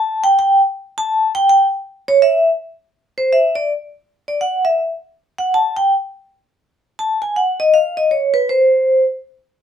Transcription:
vibraphone
Already playing: A5
0.24 G5
0.39 G5
0.98 A5
1.35 G5
1.49 G5
2.08 C#5
2.22 E5
3.18 C5
3.33 E5
3.55 D5
4.28 D5
4.41 F#5
4.65 E5
5.38 F#5
5.54 A5
5.77 G5
6.99 A5
7.22 G#5
7.36 F#5
7.60 D#5
7.74 F5
7.97 D#5
8.11 C#5
8.34 B4
8.49 C5

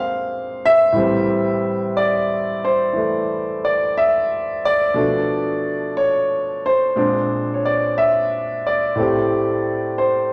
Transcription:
grand piano
Already playing: A#2 G#3 A#3 C4 D4 F5
0.65 E5
0.92 A2 E3 G3
0.97 C4
1.97 D5
2.64 C5
2.93 E3 A3
3.65 D5
3.97 E5
4.65 D5
4.94 B2 F3 A3 D4
5.97 C#5
6.66 C5
6.96 A#2 G#3 C4 D4
7.54 C#5
7.65 D5
7.98 E5
8.67 D5
8.96 A2 A3 C4
9.01 G4
9.98 C5

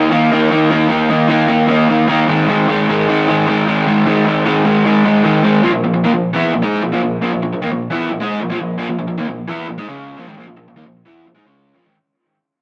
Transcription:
overdriven electric guitar
Already playing: A#3 D#4
0.11 D#3 A#3 D#4
0.31 D#3 A#3 D#4
0.51 D#3 A#3 D#4
0.70 D#3 A#3 D#4
0.89 D#3 A#3 D#4
1.09 D#3 A#3 D#4
1.29 D#3 A#3 D#4
1.48 D#3 A#3 D#4
1.68 D#3 A#3 D#4
1.89 D#3 A#3 D#4
2.08 D#3 A#3 D#4
2.27 G#2 D#3 G#3
2.47 G#2 D#3 G#3
2.68 G#2 D#3 G#3
2.88 G#2 D#3 G#3
3.07 G#2 D#3 G#3
3.28 G#2 D#3 G#3
3.47 G#2 D#3 G#3
3.66 G#2 D#3 G#3
3.87 G#2 D#3 G#3
4.06 G#2 D#3 G#3
4.26 G#2 D#3 G#3
4.45 G#2 D#3 G#3
4.64 G#2 D#3 G#3
4.85 G#2 D#3 G#3
5.05 G#2 D#3 G#3
5.24 G#2 D#3 G#3
5.43 G#2 D#3 G#3
5.63 A#2 F3
5.73 A#2 F3
5.84 A#2 F3
5.94 A#2 F3
6.04 D#3 A#3
6.14 A#2 F3
6.33 E3 B3 E4
6.53 A#2 F3
6.62 G#3 D#4 G#4
6.82 A#2 F3
6.92 A#2 F3
7.03 A#2 F3
7.22 A#2 F3
7.33 A#2 F3
7.43 A#2 F3
7.53 A#2 F3
7.62 D#3 A#3
7.72 A#2 F3
7.90 E3 B3 E4
8.10 A#2 F3
8.20 G#3 D#4 G#4
8.41 A#2 F3
8.50 A#2 F3
8.60 A#2 F3
8.78 A#2 F3
8.89 A#2 F3
8.99 A#2 F3
9.07 A#2 F3
9.18 D#3 A#3
9.27 A#2 F3
9.48 E3 B3 E4
9.69 A#2 F3
9.78 G#3 D#4
9.88 C#3 G#3 C#4
10.17 A#2 F3
10.27 G#2 D#3
10.38 A#2 F3
10.47 A#2 F3
10.57 A#2 F3
10.68 A#2 F3
10.76 D#3 A#3
10.86 A#2 F3
11.05 E3 B3 E4
11.26 A#2 F3
11.35 G#3 D#4
11.45 C#3 G#3 C#4
11.74 A#2 F3
11.85 G#2 D#3

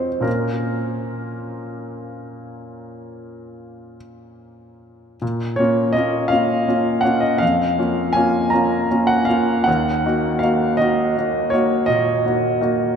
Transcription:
grand piano
Already playing: F2 C4 F4 F#4 C5 C#5
0.21 A#2 A#3 C#4 F4 A#4
5.22 A#2
5.56 A#3 C#4 F4 C#5
5.93 A#3 D#5
5.97 C#4 F4
6.28 A#3 C#4 F5
6.32 F4
6.68 A#3 C#4 F4
7.01 A#3 F#5
7.05 C#4 F4
7.20 D#5
7.38 F2 F5
7.78 A#3 C#4 F4
8.13 A#3 C#4 G#5
8.17 F4
8.50 A#3 C#4 F4 A#5
8.91 A#3 C#4 F4
9.07 F#5
9.25 A#3 C#4 F5
9.29 F4
9.64 D#2 F#5
10.05 A#3 D#4 F#4
10.39 A#3 D#4 F5
10.43 F#4
10.77 A#3 D#4 F#4 D#5
11.17 A#3 D#4 F#4
11.50 A#3 D#4 F#4 C#5
11.86 A#2 D#5
12.25 A#3 D#4 F#4
12.61 A#3 D#4 F#4

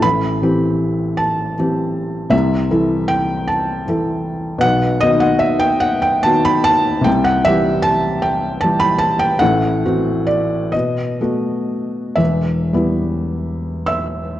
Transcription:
felt piano
0.00 A1 A2 B5
0.42 E3 C4 G4
1.17 A5
1.58 E3 C4 G4
2.30 C2 C3 E5
2.71 E3 E4 A4
3.08 G5
3.47 A5
3.88 E3 E4 A4
4.58 B2 F#5
4.63 B1
5.00 D#3 B3 F#4 D#5
5.20 F#5
5.39 E5
5.59 G5
5.80 F#5
6.02 G5
6.23 D#3 B3 F#4 A5
6.45 B5
6.64 A5
7.01 C3 G5
7.06 C2
7.25 F#5
7.45 E3 G3 G4 E5
7.82 A5
8.22 G5
8.61 E3 G3 G4 A5
8.80 B5
8.98 A5
9.19 G5
9.39 A1 A2 F#5
9.85 E3 C4 F#4
10.26 D5
10.72 B2 D#5
11.21 A3 B3 F#4
12.15 E1 E2 E5
12.73 G3 B3 E4
13.87 E5 E6

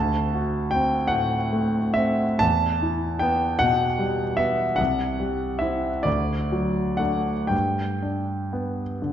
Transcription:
grand piano
Already playing: D2 A5
0.35 F#4
0.71 C4 G5
1.07 A2 F#5
1.52 A3
1.94 C4 E5
2.39 E2 A5
2.82 E4
3.19 B3 G5
3.59 B2 F#5
3.99 G3
4.37 B3 E5
4.76 C2 F#5
5.20 G3
5.59 C4 E4 E5
6.03 D2 D5
6.52 F#3
6.97 A3 D4 F#5
7.47 G2 G5
8.02 D4
8.53 B3
9.02 D3

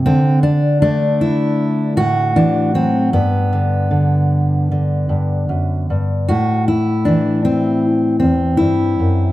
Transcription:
steel-string acoustic guitar
0.06 D3 C4
0.43 D4
0.82 A3 D4
1.21 E4
1.97 A2 F#4
2.36 E3 D4
2.74 F#3 C4
3.13 G2 B3
3.53 D3
3.91 D3
4.72 D3
5.09 G2
5.49 F#2
5.90 G2
6.28 A2 F#4
6.68 E4
7.05 E3 D4
7.45 C4
8.20 E2 C4
8.57 G2 E4
9.00 F#2

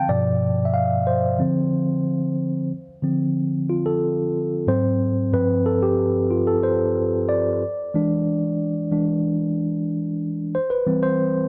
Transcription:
tine electric piano
Already playing: D3 F3 C4 F5 G5 A5
0.08 G2 B2 F3 D5
0.65 E5
0.74 F5
1.07 C5
1.39 D3 F3 C4
3.03 D3 F3 C4
3.70 F4
3.86 A4
4.67 G#2 F#3 C4 C5
5.32 G2 F3 C4 B4
5.66 A4
5.83 G4
6.31 F4
6.47 A4
6.63 C5
7.29 D5
7.94 E3 G#3 D4
8.91 E3 G#3 D4
10.55 C5
10.70 B4
10.86 E3 G3 C4
11.03 C5

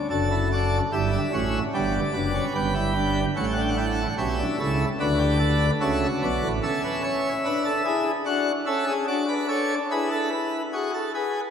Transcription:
pipe organ
0.10 F#1 F#2 D4 A4 A5
0.31 E4
0.53 F#4 D5
0.93 G1 G2 E4 G4 E5
1.13 D4
1.33 A1 A2 C#4 F#4
1.74 G1 G2 B3 G4 D5
2.14 F#1 F#2 D4 B4
2.35 C#4
2.55 G1 G2 B3 G5
2.75 E4
2.95 D4
3.36 A1 A2 C#4 A4 F#5
3.44 G5
3.52 F#5
3.57 D4 G5
3.68 F#5
3.77 E4 G5
3.86 F#5
4.18 B1 B2 C#4 G4 E5
4.39 D4
4.59 C#2 C#3 E4 A4
5.00 D2 D3 F#4 B4 D5
5.19 G4
5.39 A4
5.81 C#2 C#3 F#4 A4 E5
6.23 B1 B2 B4 D5
6.43 A1 A2
6.63 C#4 A4 E5
6.84 B4
7.03 C#5
7.45 D4 B4
7.65 A4
7.85 E4 G#4
8.25 D4 F#4 F#5
8.67 C#4 A4 E5
8.87 G#4
9.08 D4 F#4 D5
9.28 B4
9.48 A4 C#5
9.91 E4 G#4 B4
10.11 A4
10.32 B4
10.73 F#4 G#4
10.94 A4
11.14 G#4 B4

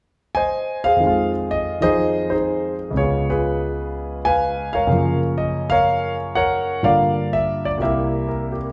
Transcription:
grand piano
0.35 C5 D#5 G#5
0.84 G#4 C5 F5
0.96 F2 D#3
1.04 G#3 F4
1.51 D#5
1.81 D#3 F3 D#4 G#4 C5 D#5
2.30 D#4 G#4 C5
2.91 C#2 C#3
2.97 B3 F4 G#4 C#5
3.02 F4
3.30 F4 G#4 B4
4.25 B4 F5 G#5
4.73 A#4 C#5 F5
4.87 F#2 C#3 A#3
4.92 F3
5.38 D#5
5.70 A#4 C#5 F5
6.35 A#4 C#5 F#5
6.83 G2 D3 A#3 F4 A#4 D5 F5
7.33 E5
7.65 D5
7.78 C2 C3 A#3
7.82 E4 G4 A#4 E5
8.29 A#4
8.52 G4

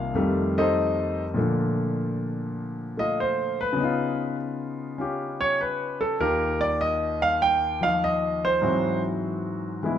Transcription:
grand piano
Already playing: C2 C3 D#3 A#3 F4 F5
0.14 F2 D#3 G3 A3
0.58 D#4 A4 C5 D#5
1.34 A#2 F3 A3
1.39 D3
2.97 A3 F4 D#5
3.20 C5
3.61 B4
3.73 C#3 B3
3.80 D#4 F4
4.98 C#4 F4 G4
5.41 C#5
5.61 B4
6.01 A4
6.20 D#2 D#3 F4 G4 A#4
6.61 D5
6.81 D#5
7.22 F5
7.42 G5
7.81 F3 D#4 F4 F5
8.04 D#5
8.45 C5
8.62 G#2 E3 F#3 C4 F#4
9.83 E3 G#3 B3 E4

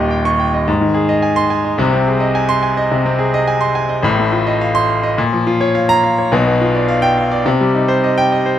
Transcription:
grand piano
Already playing: D#1 D#2 A#2 G4 D#5
0.11 G5
0.25 C#6
0.39 G5
0.54 D#5
0.68 G#2
0.81 D#3
0.94 G#4
1.09 D#5
1.22 G#5
1.36 C6
1.50 G#5
1.65 D#5
1.78 C2 C3
1.93 C4
2.08 G#4
2.20 D#5
2.35 G#5
2.49 C6
2.63 G#5
2.77 D#5
2.92 C3
3.06 C4
3.19 G#4
3.34 D#5
3.48 G#5
3.61 C6
3.75 G#5
3.89 D#5
4.03 A1 A2
4.18 A3
4.33 F4
4.47 D#5
4.61 F5
4.75 C6
4.89 F5
5.03 D#5
5.18 A#2
5.33 F3
5.47 F4
5.61 C#5
5.75 F5
5.89 A#5
6.04 F5
6.18 C#5
6.32 B1 B2
6.47 B3
6.61 F4
6.75 D5
6.88 F5
7.02 G5
7.17 F5
7.31 D5
7.46 C3
7.61 G3
7.75 D#4
7.88 C5
8.04 D#5
8.18 G5
8.32 D#5
8.46 C5

